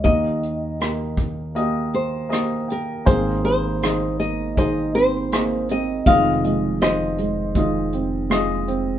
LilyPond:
<<
  \new Staff \with { instrumentName = "Nylon-string guitar" } { \time 4/4 \key aes \major \tempo 4 = 80 ees''2~ ees''8 c''4 bes'8 | c''8 c''4 ees''8 ees''8 c''4 ees''8 | f''4 ees''2 r4 | }
  \new Staff \with { instrumentName = "Grand piano" } { \time 4/4 \key aes \major << { r2. ees''8 g''8 | r1 | r1 | } \\ { <bes g' ees''>4 <bes g' bes'>4 <bes g' ees''>4 <bes g'>4 | <bes aes' c''>8 <bes aes' c''>8 <bes aes' ees''>4 <bes aes' c''>4 <bes aes' ees''>4 | <aes f' ees''>8 <aes f' ees''>8 <aes f' c''>4 <aes f' ees''>4 <aes f' ees''>4 | } >> }
  \new Staff \with { instrumentName = "Grand piano" } { \clef bass \time 4/4 \key aes \major <ees, ees>1 | <aes,, aes,>1 | <f,, f,>1 | }
  \new Staff \with { instrumentName = "Felt piano" } { \time 4/4 \key aes \major r1 | <ees c'>8 bes8 ees8 bes8 ees8 c'8 bes8 c'8 | <ees c'>8 aes8 ees8 aes8 ees8 c'8 aes8 c'8 | }
  \new Staff \with { instrumentName = "Upright bass" } { \clef bass \time 4/4 \key aes \major ees,1 | aes,,1 | f,,1 | }
  \new DrumStaff \with { instrumentName = "Drums" } \drummode { \time 4/4 <hh bd>8 hh8 <hh ss>8 <hh bd>8 hh8 hh8 <hh ss>8 hh8 | <hh bd>8 hh8 <hh ss>8 hh8 <hh bd>8 hh8 <hh ss>8 hh8 | <hh bd>8 hh8 <hh ss>8 hh8 <hh bd>8 hh8 <hh ss>8 hh8 | }
>>